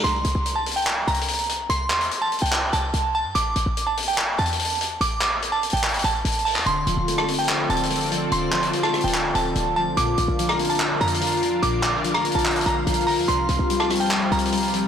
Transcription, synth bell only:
\new Staff \with { instrumentName = "Synth bell" } { \time 4/4 \key d \minor \tempo 4 = 145 c'''4~ c'''16 a''8 g''8. bes''4. | c'''4~ c'''16 a''8 g''8. a''4 a''8 | d'''4~ d'''16 a''8 g''8. a''4. | d'''4~ d'''16 a''8 g''8. a''4 a''8 |
c'''4~ c'''16 a''8 g''8. a''4. | c'''4~ c'''16 a''8 g''8. a''4 a''8 | d'''4~ d'''16 bes''8 a''8. bes''4. | d'''4~ d'''16 bes''8 a''8. bes''4 bes''8 |
c'''4~ c'''16 a''8 g''8. bes''4. | }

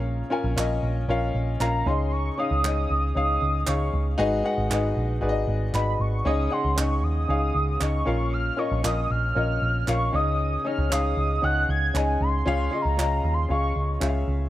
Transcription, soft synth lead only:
\new Staff \with { instrumentName = "Soft synth lead" } { \time 4/4 \key des \major \tempo 4 = 116 r2. bes''8 c'''8 | des'''8 ees'''4. ees'''4 des'''8. r16 | r2. ces'''8 des'''8 | ees'''8 c'''8 des'''8 ees'''4. des'''4 |
f'''8 des'''8 ees'''8 f'''4. des'''8 ees'''8~ | ees'''8 f'''8 ees'''4 ges'''8 aes'''8 aes''8 c'''8~ | \tuplet 3/2 { c'''4 bes''8~ bes''4 c'''8 } des'''4 r4 | }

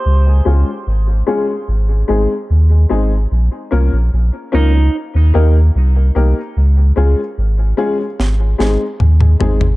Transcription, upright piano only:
\new Staff \with { instrumentName = "Upright piano" } { \time 4/4 \key des \lydian \tempo 4 = 74 r8 <aes des' f' aes'>16 r8. <aes des' f' aes'>16 <f' aes'>16 r8 <aes c' ees' aes'>16 r8. <aes c' ees' aes'>16 r16 | r8 <bes des' f' bes'>16 r8. <bes des' f' bes'>16 <f' bes'>16 r8 <bes ees' g' bes'>16 r8. <bes ees' g' bes'>16 r16 | r8 <aes des' f' aes'>16 r8. <aes des' f' aes'>16 <f' aes'>16 r8 <aes c' ees' aes'>16 r8. <aes c' ees' aes'>16 r16 | }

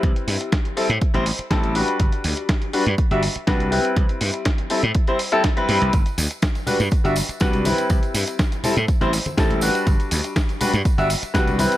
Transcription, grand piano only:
\new Staff \with { instrumentName = "Grand piano" } { \time 4/4 \key g \major \tempo 4 = 122 <g c' e' b'>4. <g c' e' a'>16 r8 <g c' e' c''>16 r8 <g c' e' a'>8 <g d' fis' b'>8~ | <g d' fis' b'>4. <g d' fis' b'>16 r8 <g d' fis' e''>16 r8 <g d' fis' b'>8 <g c' e' b'>8~ | <g c' e' b'>4. <g c' e' a'>16 r8 <g c' e' c''>16 r16 <g c' e' a'>16 r16 <g c' e' b'>8. | r4. <g d' fis' b'>16 r8 <g d' fis' e''>16 r8 <g d' fis' b'>8 <g c' e' b'>8~ |
<g c' e' b'>4. <g c' e' a'>16 r8 <g c' e' c''>16 r8 <g c' e' a'>8 <g d' fis' b'>8~ | <g d' fis' b'>4. <g d' fis' b'>16 r8 <g d' fis' e''>16 r8 <g d' fis' b'>8 <g c' e' b'>8 | }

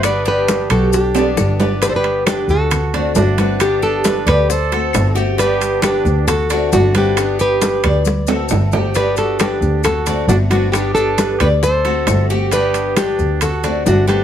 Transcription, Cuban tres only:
\new Staff \with { instrumentName = "Cuban tres" } { \time 4/4 \key g \major \tempo 4 = 135 b'8 d'4 g'4 d'4 b'8 | d'4 b'8 r4 d'4 b'8~ | b'8 g'8 b'8 d''4 a'4 g'8 | d'4 b'8 r4 d'4 b'8~ |
b'8 g'8 b'8 d''4 a'4 g'8 | d'4 b'8 r4 d'4 b'8~ | b'8 g'8 b'8 d''4 a'4 g'8 | d'4 b'8 r4 d'4 b'8 | }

